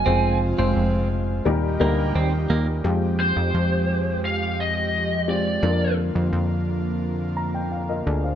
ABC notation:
X:1
M:4/4
L:1/16
Q:1/4=86
K:Fdor
V:1 name="Lead electric guitar"
a2 z12 z2 | z2 c6 f2 e4 d2- | d2 z12 z2 |]
V:2 name="Upright piano"
[A,CFAc]2 z [A,CFAc]4- [A,CFAc] [G,B,EGB]2 [G,B,EGB]4- [G,B,EGB] z | [A,CFG]6 z8 [A,CFG]2 | [B,DF=AB]6 z4 b g f [FBe] [_Ad] [cf] |]
V:3 name="Upright piano" clef=bass
z8 B,,6 z2 | z16 | z16 |]
V:4 name="Clean electric guitar"
C2 z C3 z4 B,2 C z B, z | z16 | z16 |]
V:5 name="French horn section"
[F,F]6 z2 [G,E]6 z2 | z16 | z16 |]
V:6 name="Analog synth pad"
[C,A,F]8 [B,EG]8 | [F,A,G]16 | [D,B,F]16 |]
V:7 name="Analog synth bass" clef=bass
F,,,3 F,,, F,,,4 E,,2 D,,2 E,,2 E,,2 | F,,3 F,, F,,12 | F,,3 F,, F,,8- F,,2 D,,2 |]